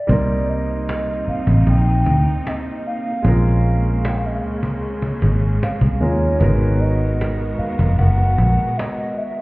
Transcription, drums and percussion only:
0.09 cajon bass
0.49 cajon slap
0.69 cajon slap
0.89 cajon slap
1.07 cajon slap
1.27 cajon slap
1.47 cajon bass
1.67 cajon bass
2.06 cajon bass
2.47 cajon slap
2.85 cajon slap
2.98 cajon slap
3.12 cajon slap
3.25 cajon bass
3.64 cajon slap
3.84 cajon slap
4.05 cajon slap
4.23 cajon slap
4.43 cajon slap
4.63 cajon bass
4.84 cajon slap
5.02 cajon bass
5.22 cajon bass
5.63 cajon slap
5.81 cajon bass
6.01 cajon slap
6.14 cajon slap
6.28 cajon slap
6.41 cajon bass
6.81 cajon slap
7.21 cajon slap
7.39 cajon slap
7.59 cajon slap
7.79 cajon bass
7.99 cajon bass
8.17 cajon slap
8.38 cajon bass
8.79 cajon slap
9.18 cajon slap
9.31 cajon slap

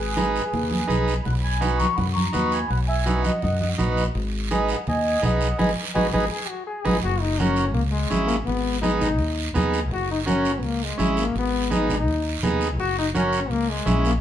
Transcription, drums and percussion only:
0.17 high conga, short guiro
0.36 short guiro
0.53 high conga, low conga, long guiro
0.71 high conga
0.89 high conga, short guiro
1.08 short guiro
1.25 high conga, low conga, long guiro
1.62 high conga, short guiro
1.80 high conga, short guiro
1.98 high conga, low conga, long guiro
2.16 high conga
2.33 high conga, short guiro
2.52 short guiro
2.71 high conga, long guiro
3.06 high conga, short guiro
3.24 high conga, short guiro
3.42 high conga, low conga, long guiro
3.61 high conga
3.79 high conga, low conga, short guiro
3.97 short guiro
4.15 high conga, long guiro
4.51 high conga, short guiro
4.69 short guiro
4.87 high conga, low conga, long guiro
5.23 high conga, low conga, short guiro
5.41 short guiro
5.59 high conga, long guiro
5.95 high conga, long guiro
6.13 high conga, long guiro
6.85 high conga, long guiro
7.03 high conga, long guiro
7.39 high conga, short guiro
7.56 short guiro
7.75 high conga, long guiro
8.11 high conga, short guiro
8.28 short guiro
8.47 high conga, long guiro
8.83 high conga, short guiro
9.01 low conga, short guiro
9.19 high conga, long guiro
9.55 high conga, low conga, short guiro
9.73 short guiro
9.91 high conga, long guiro
10.28 high conga, short guiro
10.45 short guiro
10.63 high conga, long guiro
10.99 high conga, short guiro
11.17 short guiro
11.35 high conga, long guiro
11.71 high conga, short guiro
11.89 low conga, short guiro
12.07 high conga, long guiro
12.43 high conga, low conga, short guiro
12.61 short guiro
12.79 high conga, long guiro
13.14 high conga, short guiro
13.33 short guiro
13.51 high conga, long guiro
13.86 high conga, short guiro
14.05 short guiro

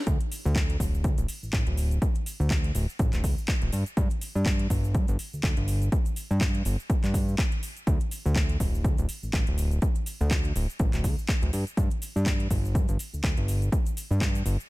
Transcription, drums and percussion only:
0.07 kick, closed hi-hat, shaker
0.21 closed hi-hat
0.32 open hi-hat, shaker
0.46 shaker
0.56 kick, clap, closed hi-hat, shaker
0.70 closed hi-hat
0.80 kick, open hi-hat, shaker
0.95 shaker
1.04 kick, closed hi-hat, shaker
1.18 closed hi-hat, shaker
1.28 open hi-hat, shaker
1.43 shaker
1.53 kick, clap, closed hi-hat, shaker
1.67 closed hi-hat
1.77 open hi-hat, shaker
1.91 closed hi-hat, shaker
2.02 kick, closed hi-hat, shaker
2.16 closed hi-hat
2.26 open hi-hat, shaker
2.41 shaker
2.50 kick, clap, closed hi-hat, shaker
2.64 closed hi-hat
2.75 open hi-hat, shaker
2.90 shaker
2.99 kick, closed hi-hat, shaker
3.13 clap, closed hi-hat, shaker
3.24 kick, open hi-hat, shaker
3.38 shaker
3.48 kick, clap, closed hi-hat, shaker
3.62 closed hi-hat
3.72 open hi-hat, shaker
3.86 closed hi-hat, shaker
3.97 kick, closed hi-hat, shaker
4.11 closed hi-hat
4.21 open hi-hat, shaker
4.36 shaker
4.46 kick, clap, closed hi-hat, shaker
4.59 closed hi-hat
4.70 kick, open hi-hat, shaker
4.84 shaker
4.95 kick, closed hi-hat, shaker
5.08 closed hi-hat, shaker
5.19 open hi-hat, shaker
5.33 shaker
5.43 kick, clap, closed hi-hat, shaker
5.57 closed hi-hat
5.68 open hi-hat, shaker
5.82 closed hi-hat, shaker
5.92 kick, closed hi-hat, shaker
6.06 closed hi-hat, shaker
6.16 open hi-hat, shaker
6.31 shaker
6.41 kick, clap, closed hi-hat, shaker
6.55 closed hi-hat
6.65 open hi-hat, shaker
6.80 shaker
6.90 kick, closed hi-hat, shaker
7.04 clap, closed hi-hat, shaker
7.14 kick, open hi-hat, shaker
7.28 shaker
7.38 kick, clap, closed hi-hat, shaker
7.52 closed hi-hat
7.63 open hi-hat, shaker
7.77 closed hi-hat, shaker
7.87 kick, closed hi-hat, shaker
8.01 closed hi-hat
8.11 open hi-hat, shaker
8.26 shaker
8.36 kick, clap, closed hi-hat, shaker
8.49 closed hi-hat
8.60 kick, open hi-hat, shaker
8.75 shaker
8.84 kick, closed hi-hat, shaker
8.98 closed hi-hat, shaker
9.09 open hi-hat, shaker
9.23 shaker
9.33 kick, clap, closed hi-hat, shaker
9.47 closed hi-hat
9.58 open hi-hat, shaker
9.71 closed hi-hat, shaker
9.82 kick, closed hi-hat, shaker
9.96 closed hi-hat
10.06 open hi-hat, shaker
10.21 shaker
10.31 kick, clap, closed hi-hat, shaker
10.45 closed hi-hat
10.56 open hi-hat, shaker
10.70 shaker
10.79 kick, closed hi-hat, shaker
10.93 clap, closed hi-hat, shaker
11.04 kick, open hi-hat, shaker
11.19 shaker
11.29 kick, clap, closed hi-hat, shaker
11.43 closed hi-hat
11.53 open hi-hat, shaker
11.67 closed hi-hat, shaker
11.77 kick, closed hi-hat, shaker
11.91 closed hi-hat
12.02 open hi-hat, shaker
12.16 shaker
12.26 kick, clap, closed hi-hat, shaker
12.40 closed hi-hat
12.50 kick, open hi-hat, shaker
12.65 shaker
12.75 kick, closed hi-hat, shaker
12.89 closed hi-hat, shaker
12.99 open hi-hat, shaker
13.14 shaker
13.24 kick, clap, closed hi-hat, shaker
13.38 closed hi-hat
13.48 open hi-hat, shaker
13.62 closed hi-hat, shaker
13.72 kick, closed hi-hat, shaker
13.87 closed hi-hat, shaker
13.97 open hi-hat, shaker
14.12 shaker
14.21 kick, clap, closed hi-hat, shaker
14.35 closed hi-hat, shaker
14.46 open hi-hat, shaker
14.60 shaker

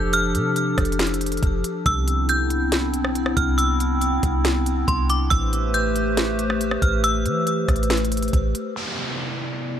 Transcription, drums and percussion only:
0.13 closed hi-hat
0.35 closed hi-hat
0.56 closed hi-hat
0.78 kick, cross-stick, closed hi-hat
0.85 closed hi-hat
0.92 closed hi-hat
0.99 snare, closed hi-hat
1.07 closed hi-hat
1.14 closed hi-hat
1.21 closed hi-hat
1.26 closed hi-hat
1.32 closed hi-hat
1.37 closed hi-hat
1.43 kick, closed hi-hat
1.64 closed hi-hat
1.86 kick, closed hi-hat
2.08 closed hi-hat
2.29 closed hi-hat
2.50 closed hi-hat
2.72 snare, closed hi-hat
2.94 closed hi-hat
3.05 cross-stick
3.15 closed hi-hat
3.26 cross-stick
3.37 kick, closed hi-hat
3.58 closed hi-hat
3.80 closed hi-hat
4.02 closed hi-hat
4.23 kick, closed hi-hat
4.45 snare, closed hi-hat
4.66 closed hi-hat
4.88 kick, closed hi-hat
5.10 closed hi-hat
5.31 kick, closed hi-hat
5.53 closed hi-hat
5.74 closed hi-hat
5.96 closed hi-hat
6.17 snare, closed hi-hat
6.39 closed hi-hat
6.50 cross-stick
6.61 closed hi-hat
6.71 cross-stick
6.82 kick, closed hi-hat
7.04 closed hi-hat
7.26 closed hi-hat
7.47 closed hi-hat
7.68 kick, cross-stick, closed hi-hat
7.76 closed hi-hat
7.83 closed hi-hat
7.90 snare, closed hi-hat
7.97 closed hi-hat
8.05 closed hi-hat
8.12 closed hi-hat
8.17 closed hi-hat
8.22 closed hi-hat
8.28 closed hi-hat
8.33 kick, closed hi-hat
8.55 closed hi-hat

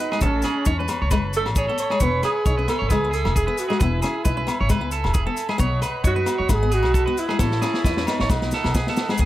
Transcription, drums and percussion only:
0.12 cross-stick, low agogo
0.21 kick, maracas
0.42 cross-stick, closed hi-hat, low agogo, maracas
0.65 kick, maracas
0.88 cross-stick, closed hi-hat, low agogo, maracas
1.11 kick, cross-stick, low agogo, maracas
1.33 closed hi-hat, maracas
1.46 cross-stick, low agogo
1.56 kick, maracas
1.77 closed hi-hat, maracas
1.90 cross-stick, low agogo
2.00 kick, maracas
2.23 cross-stick, closed hi-hat, low agogo, maracas
2.46 kick, maracas
2.68 cross-stick, closed hi-hat, low agogo, maracas
2.90 kick, cross-stick, low agogo, maracas
3.13 closed hi-hat, maracas
3.25 cross-stick, low agogo
3.36 kick, maracas
3.58 closed hi-hat, maracas
3.70 cross-stick, low agogo
3.80 kick, maracas
4.02 cross-stick, closed hi-hat, low agogo, maracas
4.25 kick, maracas
4.48 cross-stick, closed hi-hat, low agogo, maracas
4.69 kick, cross-stick, low agogo, maracas
4.91 closed hi-hat, maracas
5.04 cross-stick, low agogo
5.14 kick, maracas
5.37 closed hi-hat, maracas
5.49 cross-stick, low agogo
5.59 kick, maracas
5.82 cross-stick, closed hi-hat, low agogo, maracas
6.04 kick, maracas
6.26 cross-stick, closed hi-hat, low agogo, maracas
6.49 kick, cross-stick, low agogo, maracas
6.71 closed hi-hat, maracas
6.83 cross-stick, low agogo
6.94 kick, maracas
7.17 closed hi-hat, maracas
7.29 cross-stick, low agogo
7.39 kick, snare, maracas
7.51 snare
7.62 snare, low agogo, maracas
7.74 snare
7.84 kick, snare, maracas
7.97 snare
8.07 snare, low agogo, maracas
8.19 snare
8.30 kick, snare, low agogo, maracas
8.42 snare
8.51 snare, maracas
8.64 snare, low agogo
8.75 kick, snare, maracas
8.87 snare
8.96 snare, maracas
9.09 snare, low agogo
9.18 kick, maracas

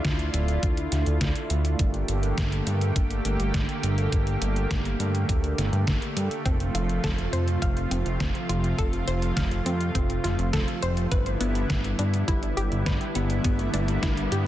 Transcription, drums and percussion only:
0.05 kick, snare, closed hi-hat
0.19 closed hi-hat
0.34 closed hi-hat
0.48 closed hi-hat
0.63 kick, closed hi-hat
0.77 closed hi-hat
0.92 snare, closed hi-hat
1.06 closed hi-hat
1.21 kick, snare, closed hi-hat
1.35 closed hi-hat
1.50 closed hi-hat
1.65 closed hi-hat
1.79 kick, closed hi-hat
1.94 closed hi-hat
2.08 closed hi-hat
2.23 closed hi-hat
2.38 kick, snare, closed hi-hat
2.52 closed hi-hat
2.67 closed hi-hat
2.81 closed hi-hat
2.96 kick, closed hi-hat
3.11 closed hi-hat
3.25 closed hi-hat
3.40 closed hi-hat
3.54 kick, snare, closed hi-hat
3.69 closed hi-hat
3.83 closed hi-hat
3.98 closed hi-hat
4.12 kick, closed hi-hat
4.27 closed hi-hat
4.42 closed hi-hat
4.56 closed hi-hat
4.71 kick, snare, closed hi-hat
4.85 closed hi-hat
5.00 closed hi-hat
5.15 closed hi-hat
5.29 kick, closed hi-hat
5.44 closed hi-hat
5.58 snare, closed hi-hat
5.73 closed hi-hat
5.87 kick, snare, closed hi-hat
6.02 closed hi-hat
6.17 closed hi-hat
6.31 closed hi-hat
6.46 kick, closed hi-hat
6.60 closed hi-hat
6.75 closed hi-hat
6.89 closed hi-hat
7.04 kick, snare, closed hi-hat
7.18 closed hi-hat
7.33 closed hi-hat
7.48 closed hi-hat
7.62 kick, closed hi-hat
7.77 closed hi-hat
7.91 closed hi-hat
8.06 closed hi-hat
8.20 kick, snare, closed hi-hat
8.35 closed hi-hat
8.49 closed hi-hat
8.64 closed hi-hat
8.78 kick, closed hi-hat
8.93 closed hi-hat
9.08 closed hi-hat
9.22 closed hi-hat
9.37 kick, snare, closed hi-hat
9.51 closed hi-hat
9.66 closed hi-hat
9.81 closed hi-hat
9.95 kick, closed hi-hat
10.10 closed hi-hat
10.24 snare, closed hi-hat
10.39 closed hi-hat
10.53 kick, snare, closed hi-hat
10.68 closed hi-hat
10.82 closed hi-hat
10.97 closed hi-hat
11.12 kick, closed hi-hat
11.26 closed hi-hat
11.41 closed hi-hat
11.55 closed hi-hat
11.70 kick, snare, closed hi-hat
11.84 closed hi-hat
11.99 closed hi-hat
12.14 closed hi-hat
12.28 kick, closed hi-hat
12.43 closed hi-hat
12.57 closed hi-hat
12.72 closed hi-hat
12.86 kick, snare, closed hi-hat
13.01 closed hi-hat
13.15 closed hi-hat
13.30 closed hi-hat
13.44 kick, closed hi-hat
13.59 closed hi-hat
13.74 closed hi-hat
13.88 closed hi-hat
14.03 kick, snare, closed hi-hat
14.17 closed hi-hat
14.32 closed hi-hat

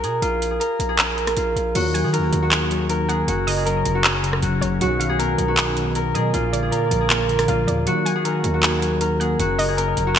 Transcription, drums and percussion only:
0.04 closed hi-hat
0.22 closed hi-hat
0.42 closed hi-hat
0.61 closed hi-hat
0.80 closed hi-hat
0.99 clap, closed hi-hat
1.18 closed hi-hat
1.27 cross-stick, closed hi-hat
1.37 closed hi-hat
1.57 closed hi-hat
1.75 closed hi-hat, crash
1.95 closed hi-hat
2.14 closed hi-hat
2.33 closed hi-hat
2.51 clap, closed hi-hat
2.71 closed hi-hat
2.89 closed hi-hat
3.09 closed hi-hat
3.28 closed hi-hat
3.48 open hi-hat
3.67 closed hi-hat
3.85 closed hi-hat
4.04 clap, closed hi-hat
4.24 closed hi-hat
4.33 cross-stick
4.42 closed hi-hat
4.62 closed hi-hat
4.81 closed hi-hat
5.01 closed hi-hat
5.20 closed hi-hat
5.38 closed hi-hat
5.57 clap, closed hi-hat
5.77 closed hi-hat
5.95 closed hi-hat
6.15 closed hi-hat
6.34 closed hi-hat
6.53 closed hi-hat
6.72 closed hi-hat
6.91 closed hi-hat
7.10 clap, closed hi-hat
7.29 closed hi-hat
7.39 cross-stick, closed hi-hat
7.48 closed hi-hat
7.68 closed hi-hat
7.87 closed hi-hat
8.06 closed hi-hat
8.25 closed hi-hat
8.44 closed hi-hat
8.63 clap, closed hi-hat
8.82 closed hi-hat
9.01 closed hi-hat
9.21 closed hi-hat
9.40 closed hi-hat
9.59 open hi-hat
9.78 closed hi-hat
9.97 closed hi-hat
10.16 clap, closed hi-hat

